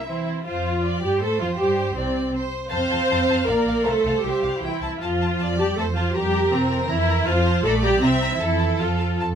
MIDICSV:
0, 0, Header, 1, 6, 480
1, 0, Start_track
1, 0, Key_signature, -1, "major"
1, 0, Tempo, 381437
1, 576, Time_signature, 3, 2, 24, 8
1, 6799, Tempo, 375469
1, 10159, Tempo, 392413
1, 11772, End_track
2, 0, Start_track
2, 0, Title_t, "Violin section"
2, 0, Program_c, 0, 48
2, 0, Note_on_c, 0, 76, 52
2, 335, Note_off_c, 0, 76, 0
2, 563, Note_on_c, 0, 65, 50
2, 1239, Note_off_c, 0, 65, 0
2, 1293, Note_on_c, 0, 67, 56
2, 1514, Note_on_c, 0, 69, 51
2, 1531, Note_off_c, 0, 67, 0
2, 1756, Note_on_c, 0, 65, 48
2, 1758, Note_off_c, 0, 69, 0
2, 1968, Note_on_c, 0, 67, 54
2, 1996, Note_off_c, 0, 65, 0
2, 2440, Note_on_c, 0, 60, 48
2, 2458, Note_off_c, 0, 67, 0
2, 2922, Note_off_c, 0, 60, 0
2, 3399, Note_on_c, 0, 81, 49
2, 3498, Note_off_c, 0, 81, 0
2, 3664, Note_on_c, 0, 81, 47
2, 3758, Note_off_c, 0, 81, 0
2, 3895, Note_on_c, 0, 81, 53
2, 3990, Note_off_c, 0, 81, 0
2, 4142, Note_on_c, 0, 81, 45
2, 4235, Note_off_c, 0, 81, 0
2, 4384, Note_on_c, 0, 77, 45
2, 4476, Note_off_c, 0, 77, 0
2, 4633, Note_on_c, 0, 77, 43
2, 4725, Note_off_c, 0, 77, 0
2, 4847, Note_on_c, 0, 77, 43
2, 4945, Note_off_c, 0, 77, 0
2, 5106, Note_on_c, 0, 77, 40
2, 5201, Note_off_c, 0, 77, 0
2, 5337, Note_on_c, 0, 76, 57
2, 5564, Note_off_c, 0, 76, 0
2, 5576, Note_on_c, 0, 77, 47
2, 5817, Note_on_c, 0, 79, 53
2, 5822, Note_off_c, 0, 77, 0
2, 6060, Note_off_c, 0, 79, 0
2, 6071, Note_on_c, 0, 81, 48
2, 6169, Note_off_c, 0, 81, 0
2, 6317, Note_on_c, 0, 81, 43
2, 6414, Note_off_c, 0, 81, 0
2, 6560, Note_on_c, 0, 81, 43
2, 6656, Note_off_c, 0, 81, 0
2, 6775, Note_on_c, 0, 81, 46
2, 6877, Note_off_c, 0, 81, 0
2, 7047, Note_on_c, 0, 81, 41
2, 7142, Note_off_c, 0, 81, 0
2, 7283, Note_on_c, 0, 81, 45
2, 7379, Note_off_c, 0, 81, 0
2, 7512, Note_on_c, 0, 81, 41
2, 7611, Note_off_c, 0, 81, 0
2, 7749, Note_on_c, 0, 82, 51
2, 7848, Note_off_c, 0, 82, 0
2, 7976, Note_on_c, 0, 82, 48
2, 8077, Note_off_c, 0, 82, 0
2, 8242, Note_on_c, 0, 82, 53
2, 8337, Note_off_c, 0, 82, 0
2, 8469, Note_on_c, 0, 82, 50
2, 8568, Note_off_c, 0, 82, 0
2, 8689, Note_on_c, 0, 82, 58
2, 8791, Note_off_c, 0, 82, 0
2, 8959, Note_on_c, 0, 82, 52
2, 9055, Note_off_c, 0, 82, 0
2, 9178, Note_on_c, 0, 81, 54
2, 9278, Note_off_c, 0, 81, 0
2, 9432, Note_on_c, 0, 81, 53
2, 9529, Note_off_c, 0, 81, 0
2, 9673, Note_on_c, 0, 82, 55
2, 9770, Note_off_c, 0, 82, 0
2, 9891, Note_on_c, 0, 82, 57
2, 9993, Note_off_c, 0, 82, 0
2, 10128, Note_on_c, 0, 82, 50
2, 10228, Note_off_c, 0, 82, 0
2, 10377, Note_on_c, 0, 82, 49
2, 10475, Note_off_c, 0, 82, 0
2, 10625, Note_on_c, 0, 81, 48
2, 10722, Note_off_c, 0, 81, 0
2, 10847, Note_on_c, 0, 81, 44
2, 10945, Note_off_c, 0, 81, 0
2, 11069, Note_on_c, 0, 81, 52
2, 11166, Note_off_c, 0, 81, 0
2, 11324, Note_on_c, 0, 81, 43
2, 11421, Note_off_c, 0, 81, 0
2, 11578, Note_on_c, 0, 81, 50
2, 11675, Note_off_c, 0, 81, 0
2, 11772, End_track
3, 0, Start_track
3, 0, Title_t, "Violin section"
3, 0, Program_c, 1, 48
3, 72, Note_on_c, 1, 60, 40
3, 561, Note_off_c, 1, 60, 0
3, 579, Note_on_c, 1, 72, 40
3, 1025, Note_off_c, 1, 72, 0
3, 1054, Note_on_c, 1, 74, 44
3, 1515, Note_on_c, 1, 72, 44
3, 1521, Note_off_c, 1, 74, 0
3, 2447, Note_off_c, 1, 72, 0
3, 2460, Note_on_c, 1, 74, 46
3, 2941, Note_on_c, 1, 72, 49
3, 2942, Note_off_c, 1, 74, 0
3, 3409, Note_off_c, 1, 72, 0
3, 3410, Note_on_c, 1, 77, 58
3, 4343, Note_off_c, 1, 77, 0
3, 4361, Note_on_c, 1, 74, 51
3, 4845, Note_off_c, 1, 74, 0
3, 4847, Note_on_c, 1, 72, 47
3, 6067, Note_off_c, 1, 72, 0
3, 6800, Note_on_c, 1, 74, 57
3, 7250, Note_off_c, 1, 74, 0
3, 7288, Note_on_c, 1, 72, 46
3, 7757, Note_on_c, 1, 70, 58
3, 7767, Note_off_c, 1, 72, 0
3, 9194, Note_off_c, 1, 70, 0
3, 9202, Note_on_c, 1, 72, 67
3, 9658, Note_on_c, 1, 74, 68
3, 9668, Note_off_c, 1, 72, 0
3, 10150, Note_off_c, 1, 74, 0
3, 10152, Note_on_c, 1, 76, 69
3, 10620, Note_on_c, 1, 69, 57
3, 10628, Note_off_c, 1, 76, 0
3, 11772, Note_off_c, 1, 69, 0
3, 11772, End_track
4, 0, Start_track
4, 0, Title_t, "Viola section"
4, 0, Program_c, 2, 48
4, 85, Note_on_c, 2, 64, 49
4, 544, Note_off_c, 2, 64, 0
4, 568, Note_on_c, 2, 65, 55
4, 1277, Note_off_c, 2, 65, 0
4, 1296, Note_on_c, 2, 67, 59
4, 1528, Note_off_c, 2, 67, 0
4, 1540, Note_on_c, 2, 69, 59
4, 1762, Note_on_c, 2, 65, 51
4, 1766, Note_off_c, 2, 69, 0
4, 1857, Note_off_c, 2, 65, 0
4, 1991, Note_on_c, 2, 67, 59
4, 2460, Note_off_c, 2, 67, 0
4, 2461, Note_on_c, 2, 60, 51
4, 2933, Note_off_c, 2, 60, 0
4, 3414, Note_on_c, 2, 72, 79
4, 4313, Note_off_c, 2, 72, 0
4, 4356, Note_on_c, 2, 70, 68
4, 4843, Note_off_c, 2, 70, 0
4, 4844, Note_on_c, 2, 69, 68
4, 5328, Note_on_c, 2, 67, 57
4, 5335, Note_off_c, 2, 69, 0
4, 5819, Note_off_c, 2, 67, 0
4, 5821, Note_on_c, 2, 64, 60
4, 6310, Note_on_c, 2, 65, 66
4, 6312, Note_off_c, 2, 64, 0
4, 7026, Note_off_c, 2, 65, 0
4, 7034, Note_on_c, 2, 67, 64
4, 7270, Note_on_c, 2, 69, 69
4, 7274, Note_off_c, 2, 67, 0
4, 7368, Note_off_c, 2, 69, 0
4, 7507, Note_on_c, 2, 65, 64
4, 7749, Note_on_c, 2, 67, 78
4, 7752, Note_off_c, 2, 65, 0
4, 8226, Note_off_c, 2, 67, 0
4, 8234, Note_on_c, 2, 60, 72
4, 8708, Note_on_c, 2, 64, 85
4, 8716, Note_off_c, 2, 60, 0
4, 9181, Note_off_c, 2, 64, 0
4, 9181, Note_on_c, 2, 65, 82
4, 9660, Note_on_c, 2, 69, 91
4, 9668, Note_off_c, 2, 65, 0
4, 9759, Note_off_c, 2, 69, 0
4, 9904, Note_on_c, 2, 67, 84
4, 10138, Note_on_c, 2, 60, 75
4, 10147, Note_off_c, 2, 67, 0
4, 10494, Note_off_c, 2, 60, 0
4, 10516, Note_on_c, 2, 64, 60
4, 10601, Note_off_c, 2, 64, 0
4, 10616, Note_on_c, 2, 64, 73
4, 11095, Note_off_c, 2, 64, 0
4, 11110, Note_on_c, 2, 65, 60
4, 11595, Note_off_c, 2, 65, 0
4, 11772, End_track
5, 0, Start_track
5, 0, Title_t, "Cello section"
5, 0, Program_c, 3, 48
5, 79, Note_on_c, 3, 52, 45
5, 541, Note_off_c, 3, 52, 0
5, 576, Note_on_c, 3, 53, 46
5, 1281, Note_off_c, 3, 53, 0
5, 1299, Note_on_c, 3, 55, 47
5, 1527, Note_on_c, 3, 57, 53
5, 1534, Note_off_c, 3, 55, 0
5, 1764, Note_off_c, 3, 57, 0
5, 1771, Note_on_c, 3, 53, 46
5, 2003, Note_off_c, 3, 53, 0
5, 2009, Note_on_c, 3, 55, 50
5, 2469, Note_off_c, 3, 55, 0
5, 2488, Note_on_c, 3, 48, 46
5, 2947, Note_off_c, 3, 48, 0
5, 3429, Note_on_c, 3, 60, 60
5, 4321, Note_off_c, 3, 60, 0
5, 4372, Note_on_c, 3, 58, 64
5, 4838, Note_on_c, 3, 57, 61
5, 4841, Note_off_c, 3, 58, 0
5, 5332, Note_off_c, 3, 57, 0
5, 5333, Note_on_c, 3, 55, 47
5, 5811, Note_on_c, 3, 52, 50
5, 5812, Note_off_c, 3, 55, 0
5, 6297, Note_off_c, 3, 52, 0
5, 6302, Note_on_c, 3, 53, 51
5, 7022, Note_off_c, 3, 53, 0
5, 7031, Note_on_c, 3, 55, 58
5, 7261, Note_on_c, 3, 57, 60
5, 7277, Note_off_c, 3, 55, 0
5, 7361, Note_off_c, 3, 57, 0
5, 7510, Note_on_c, 3, 53, 54
5, 7747, Note_on_c, 3, 55, 57
5, 7753, Note_off_c, 3, 53, 0
5, 8225, Note_off_c, 3, 55, 0
5, 8231, Note_on_c, 3, 48, 65
5, 8705, Note_off_c, 3, 48, 0
5, 8709, Note_on_c, 3, 52, 69
5, 9190, Note_on_c, 3, 53, 67
5, 9192, Note_off_c, 3, 52, 0
5, 9662, Note_off_c, 3, 53, 0
5, 9674, Note_on_c, 3, 57, 82
5, 9911, Note_off_c, 3, 57, 0
5, 9915, Note_on_c, 3, 55, 75
5, 10158, Note_off_c, 3, 55, 0
5, 10158, Note_on_c, 3, 48, 57
5, 10256, Note_off_c, 3, 48, 0
5, 10504, Note_on_c, 3, 52, 54
5, 10616, Note_off_c, 3, 52, 0
5, 10630, Note_on_c, 3, 52, 61
5, 11103, Note_off_c, 3, 52, 0
5, 11108, Note_on_c, 3, 53, 50
5, 11594, Note_off_c, 3, 53, 0
5, 11772, End_track
6, 0, Start_track
6, 0, Title_t, "Double bass section"
6, 0, Program_c, 4, 48
6, 566, Note_on_c, 4, 41, 49
6, 1240, Note_off_c, 4, 41, 0
6, 1288, Note_on_c, 4, 43, 43
6, 1524, Note_off_c, 4, 43, 0
6, 1524, Note_on_c, 4, 45, 51
6, 1760, Note_on_c, 4, 41, 49
6, 1763, Note_off_c, 4, 45, 0
6, 1855, Note_off_c, 4, 41, 0
6, 1998, Note_on_c, 4, 43, 55
6, 2462, Note_on_c, 4, 36, 42
6, 2464, Note_off_c, 4, 43, 0
6, 2933, Note_off_c, 4, 36, 0
6, 3415, Note_on_c, 4, 41, 55
6, 3511, Note_off_c, 4, 41, 0
6, 3661, Note_on_c, 4, 41, 53
6, 3755, Note_off_c, 4, 41, 0
6, 3900, Note_on_c, 4, 41, 47
6, 3993, Note_off_c, 4, 41, 0
6, 4133, Note_on_c, 4, 41, 45
6, 4228, Note_off_c, 4, 41, 0
6, 4365, Note_on_c, 4, 34, 56
6, 4461, Note_off_c, 4, 34, 0
6, 4603, Note_on_c, 4, 34, 46
6, 4701, Note_off_c, 4, 34, 0
6, 4846, Note_on_c, 4, 36, 54
6, 4944, Note_off_c, 4, 36, 0
6, 5095, Note_on_c, 4, 36, 45
6, 5192, Note_off_c, 4, 36, 0
6, 5337, Note_on_c, 4, 36, 43
6, 5434, Note_off_c, 4, 36, 0
6, 5573, Note_on_c, 4, 36, 39
6, 5672, Note_off_c, 4, 36, 0
6, 5816, Note_on_c, 4, 36, 43
6, 5915, Note_off_c, 4, 36, 0
6, 6065, Note_on_c, 4, 36, 41
6, 6164, Note_off_c, 4, 36, 0
6, 6303, Note_on_c, 4, 41, 50
6, 6737, Note_off_c, 4, 41, 0
6, 6789, Note_on_c, 4, 41, 48
6, 7221, Note_off_c, 4, 41, 0
6, 7276, Note_on_c, 4, 41, 60
6, 7704, Note_off_c, 4, 41, 0
6, 7759, Note_on_c, 4, 41, 55
6, 8185, Note_off_c, 4, 41, 0
6, 8234, Note_on_c, 4, 41, 59
6, 8660, Note_off_c, 4, 41, 0
6, 8707, Note_on_c, 4, 41, 64
6, 9135, Note_off_c, 4, 41, 0
6, 9180, Note_on_c, 4, 41, 67
6, 9610, Note_off_c, 4, 41, 0
6, 9664, Note_on_c, 4, 34, 64
6, 10095, Note_off_c, 4, 34, 0
6, 10143, Note_on_c, 4, 36, 66
6, 10567, Note_off_c, 4, 36, 0
6, 10615, Note_on_c, 4, 41, 62
6, 11047, Note_off_c, 4, 41, 0
6, 11089, Note_on_c, 4, 41, 48
6, 11527, Note_off_c, 4, 41, 0
6, 11592, Note_on_c, 4, 41, 55
6, 11772, Note_off_c, 4, 41, 0
6, 11772, End_track
0, 0, End_of_file